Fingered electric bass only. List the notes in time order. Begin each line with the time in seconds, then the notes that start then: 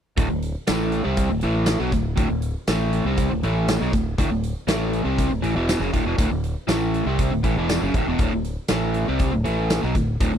0.18 D1
0.31 D1
0.69 A1
1.05 C2
1.30 D1
1.44 A1
1.80 B1
1.93 D1
2.18 D1
2.31 D1
2.68 A1
3.05 C2
3.30 D1
3.43 A1
3.81 B1
3.93 D1
4.19 D1
4.30 D1
4.67 A1
5.05 C2
5.30 D1
5.43 A1
5.55 E1
5.80 F#1
5.94 D1
6.05 E1
6.18 D1
6.31 D1
6.68 A1
7.06 C2
7.33 D1
7.44 A1
7.56 E1
7.82 F#1
7.94 D1
8.07 E1
8.19 D1
8.33 D1
8.71 A1
9.09 C2
9.34 D1
9.47 A1
9.84 B1
9.95 D1
10.21 D1
10.34 D1